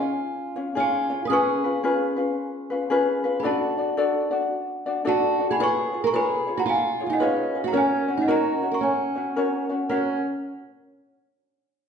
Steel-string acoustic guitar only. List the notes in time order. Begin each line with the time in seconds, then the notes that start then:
Already playing: F4
0.77 F4
1.25 B4
1.30 G#4
3.40 G#4
3.45 F#4
5.07 F#4
5.51 G#4
5.60 G#4
6.04 A#4
6.14 G#4
6.57 F#4
6.66 F4
7.06 D#4 F4
7.20 C#4
7.64 F#4
7.73 C#4
8.17 D#4
8.28 F#4
8.71 A#4
8.81 C#4
9.89 C#4